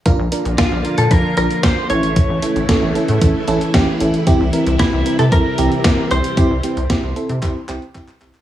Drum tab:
HH |x-xxx-xxx-xxx-xx|x-xxx-xxx-xxx-xx|x-xxx-xxx-xxx-xx|x-xxx-xxx-xxx-xx|
CP |----------------|----------------|----------------|--------x-x-xxxx|
SD |----o-------o---|----o-------o---|----o-------o---|----o-----------|
BD |o---o---o---o---|o---o---o---o---|o---o---o---o---|o---o---o---o---|